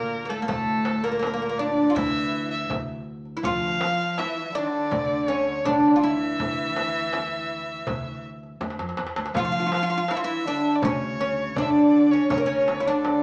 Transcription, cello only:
Already playing: A#2
0.30 A2
0.42 A#2
0.48 A2
1.03 A#2
1.96 E3
3.44 F3
4.18 E3
4.54 D3
5.65 D3
6.01 E3
9.35 F3
10.02 F3
10.08 E3
10.45 D3
10.82 C#3
11.19 C#3
11.57 D3
12.11 C#3
12.30 C#3
12.45 C#3
12.85 D3

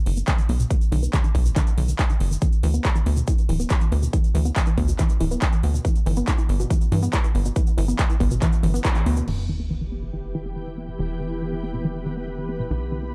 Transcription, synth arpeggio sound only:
0.06 D#3
0.17 B3
0.28 D#3
0.38 D#3
0.49 B3
0.60 B2
0.71 D#3
0.92 D#3
1.03 B3
1.13 D#3
1.24 D#3
1.35 B3
1.46 B2
1.56 D#3
1.78 D#3
1.88 D#3
1.99 D#4
2.10 D#3
2.21 D#3
2.31 D#3
2.42 E3
2.63 E3
2.74 B3
2.85 E3
2.96 E3
3.06 B3
3.17 B2
3.28 E3
3.49 E3
3.60 B3
3.70 E3
3.81 E3
3.92 B3
4.02 B2
4.13 E3
4.35 E3
4.45 B3
4.56 E3
4.67 E3
4.78 B3
4.88 B2
4.99 E3
5.21 E3
5.31 B3
5.42 E3
5.53 E3
5.64 B3
5.74 B2
5.85 E3
6.06 E3
6.17 B3
6.28 E3
6.38 E3
6.49 B3
6.60 B2
6.70 E3
6.92 E3
7.03 B3
7.13 E3
7.24 E3
7.35 B3
7.45 B2
7.56 E3
7.78 E3
7.88 B3
7.99 E3
8.10 E3
8.20 B3
8.31 B2
8.42 E3
8.63 E3
8.74 B3
8.85 E3
8.95 E3
9.06 B3
9.17 B2
9.28 E3
9.49 E3
9.60 B3
9.71 E3
9.81 E3
9.92 B3
10.03 B2
10.13 E3
10.35 E3
10.46 B3
10.56 E3
10.67 E3
10.78 B3
10.88 B2
10.99 E3
11.21 E3
11.31 B3
11.42 E3
11.53 E3
11.63 B3
11.74 B2
11.85 E3
12.06 E3
12.17 B3
12.28 E3
12.38 E3
12.49 B3
12.60 B2
12.70 D#3
12.92 D#3
13.03 B3

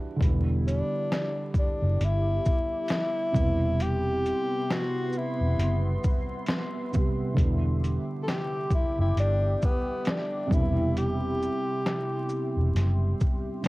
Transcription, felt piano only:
Already playing: E3 G3 D4 F#4
0.16 D3 G3
0.22 B3 E4
3.32 C3 G3
3.37 B3 E4
6.92 C3 G3 B3 G4
7.34 D3 G3
7.39 B3 E4
10.46 C3 G3
10.51 B3 D4
10.60 E4
13.62 B2 C3 G3

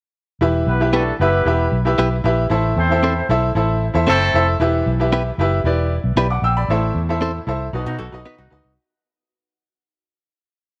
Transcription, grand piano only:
0.41 E3 E4 G4 B4 E5
0.80 E4 G4 B4 E5
1.20 E4 G4 B4 E5
1.45 E4 G4 B4 E5
1.85 E4 G4 B4 E5
2.24 E4 G4 B4 E5
2.50 A2 E4 A4 C5 E5
2.90 E4 A4 C5 E5
3.29 E4 A4 C5 E5
3.55 E4 A4 C5 E5
3.94 E4 A4 C5 E5
4.34 E4 A4 C5 E5
4.60 E3 E4 G4 B4 E5
5.00 E4 G4 B4 E5
5.39 E4 G4 B4 E5
5.65 E4 G4 B4 D5
6.17 D5 B5
6.30 F#5 D6
6.44 G5 E6
6.57 D5 B5
6.70 A2 E4 A4 C5 E5
7.09 E4 A4 C5 E5
7.47 E4 A4 C5 E5
7.73 B2 D#4 F#4 B4 D#5
8.12 D#4 F#4 B4 D#5
8.50 D#4 F#4 B4 D#5

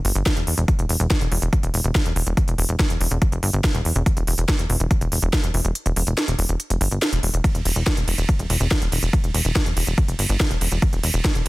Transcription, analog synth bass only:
0.05 G1
0.15 G1
0.36 E1
0.47 E1
0.58 E1
0.79 E1
0.89 E1
1.00 E1
1.21 E1
1.32 E1
1.42 E1
1.63 E1
1.74 E1
1.84 E1
2.06 E1
2.16 E1
2.27 E1
2.48 E1
2.58 E1
2.69 E1
2.90 E1
3.01 E1
3.11 E1
3.32 F1
3.43 G1
3.53 G1
3.75 E1
3.85 E1
3.96 E1
4.17 E1
4.27 E1
4.38 E1
4.59 E1
4.70 E1
4.80 E1
5.01 E1
5.12 E1
5.22 E1
5.44 E1
5.54 E1
5.65 E1
5.86 E1
5.96 E1
6.07 E1
6.28 E1
6.39 E1
6.49 E1
6.70 F1
6.81 G1
6.91 G1
7.13 E1
7.23 E1
7.34 E1
7.55 E1
7.65 E1
7.76 E1
7.97 E1
8.08 E1
8.18 E1
8.39 E1
8.50 E1
8.60 E1
8.82 E1
8.92 E1
9.03 E1
9.24 E1
9.34 E1
9.45 E1
9.66 E1
9.77 E1
9.87 E1
10.08 F1
10.19 G1
10.29 G1
10.51 E1
10.61 E1
10.72 E1
10.93 E1
11.03 E1
11.14 E1
11.35 E1

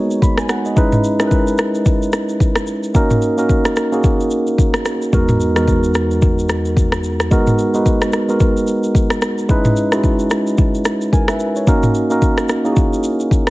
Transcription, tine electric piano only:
Already playing: G#3 A#3 B3 D#4 F#4 G#4 A#4 C#5
0.22 B5
0.38 G#5
0.49 F#5
0.66 D#5
0.76 G#3 C#4 D#4 E4 B4
1.19 G#3 C#4 D#4 E4 A#4
1.27 B4
2.94 A#3 C#4 D#4 F#4 A#4
3.37 A#3 C#4 D#4 F#4 A#4
3.92 A#3 C#4 D#4 F#4 G#4
5.12 E2 G#3 B3 D#4 F#4 A#4
5.55 E2 G#3 B3 D#4 F#4 A#4
7.31 G#3 B3 D#4 F#4 A#4
7.74 G#3 B3 D#4 F#4 B4
8.29 G#3 B3 D#4 F#4 A#4
9.49 G#3 C#4 D#4 E4 B4
9.92 G#3 C#4 D#4 E4 F#4
11.13 A#4 G#5
11.29 B4 E5
11.56 C#5
11.67 A#3 C#4 D#4 F#4 A#4
12.10 A#3 C#4 D#4 F#4 A#4
12.65 A#3 C#4 D#4 E4 G#4
12.72 F#4

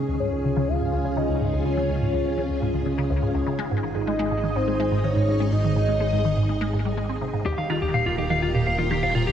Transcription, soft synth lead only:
0.20 C#5
0.68 F5
1.17 D#5
1.65 C#5
4.08 D#5
4.56 C5
5.04 C#5
5.52 D#5

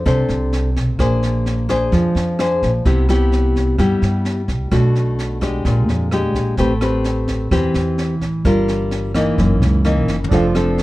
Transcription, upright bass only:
0.06 C2
0.29 C2
0.76 B1
0.99 A#1
1.92 F2
2.15 F2
2.62 A#1
2.86 C2
3.79 G2
4.02 G2
4.48 C2
4.72 B1
5.65 A#1
5.88 F2
6.35 A#1
6.58 A1
7.51 E2
7.74 E2
8.21 A1
8.45 G1
9.38 F#1
9.62 C#2
10.08 F#1
10.31 F1

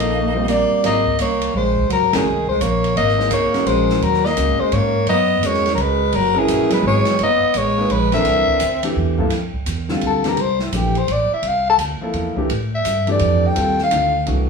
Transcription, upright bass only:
Already playing: A#1
0.70 muted upright bass stroke
0.83 G#1
1.19 C2
1.54 A#1
1.89 C#2
2.01 G#1
2.13 F#1
2.25 C2
2.60 A#1
2.96 G#1
3.30 C2
3.53 muted upright bass stroke
3.66 A#1
4.01 D#2
4.37 C#2
4.48 G#1
4.60 F#1
4.72 G#2
5.06 F#2
5.41 E2
5.76 C#2
6.13 F#1
6.48 A#1
6.70 muted upright bass stroke
6.83 G#1
7.19 F#1
7.42 muted upright bass stroke
7.54 A1
7.90 A#1
8.24 C2
8.61 D2
8.96 E2
9.31 F2
9.53 muted upright bass stroke
9.66 E2
10.02 D2
10.37 C2
10.72 A#1
11.07 A1
11.30 muted upright bass stroke
11.42 C2
11.78 D2
12.00 muted upright bass stroke
12.13 E2
12.36 muted upright bass stroke
12.50 A2
12.85 G2
13.20 F2
13.57 D#2
13.92 D2
14.28 C2

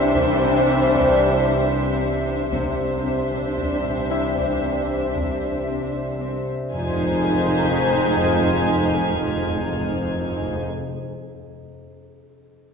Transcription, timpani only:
6.74 F2
6.81 F2
6.89 F2
6.96 F2
7.04 F2
7.11 F2
7.19 F2
7.26 F2
7.34 F2
7.41 F2
7.48 F2
7.56 F2
7.63 F2
7.71 F2
7.79 F2
7.86 F2
7.93 F2
8.01 F2
8.09 F2
8.16 F2
8.23 F2
8.31 F2
8.39 F2
8.46 F2
8.54 F2
8.61 F2
8.68 F2
8.75 F2
8.83 F2
8.90 F2
8.97 F2
9.05 F2
9.13 F2
9.20 F2
9.27 F2
9.35 F2
9.42 F2
9.50 F2
9.57 F2
9.65 F2
9.72 F2
9.80 F2
9.87 F2
9.95 F2
10.02 F2
10.10 F2
10.17 F2
10.24 F2
10.32 F2
10.40 F2
10.47 F2
10.55 F2

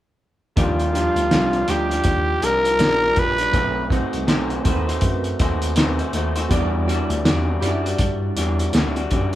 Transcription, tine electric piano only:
0.57 D#2
1.16 D2
1.31 C2
1.68 D2
2.05 D#2
2.42 C2
2.79 A#1
3.17 A#1
3.53 B1
4.13 C2
4.28 B1
4.65 D#2
5.02 F#2
5.40 D#2
6.13 D#2
6.50 E2
7.10 D2
7.24 E2
7.62 F#2
7.99 G2
8.36 E2
8.73 D2
9.11 F#2

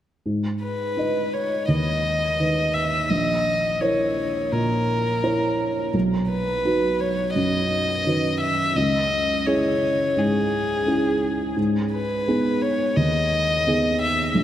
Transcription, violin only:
0.62 B4
1.33 C#5
1.70 D#5
2.73 E5
3.10 D#5
3.80 C#5
4.52 A#4
6.30 B4
7.01 C#5
7.35 D#5
8.41 E5
8.76 D#5
9.46 C#5
10.18 G#4
11.93 B4
12.62 C#5
12.96 D#5
14.02 E5

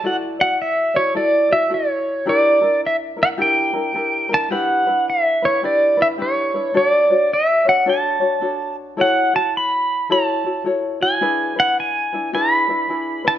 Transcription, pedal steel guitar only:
0.07 F#5
0.41 F#5
0.62 E5
0.96 C#5
1.17 D5
1.53 E5
1.74 C#5
2.29 D5
2.86 E5
3.23 F#5
3.42 G5
4.34 A5
4.52 F#5
5.10 E5
5.45 C#5
5.65 D5
6.02 E5
6.22 C#5
6.77 C#5
6.88 D5
7.33 E5
7.69 F#5
7.89 A5
9.01 F#5
9.36 A5
9.57 B5
10.12 A5
11.03 G#5
11.60 F#5
11.80 G#5
12.35 B5
13.28 A5

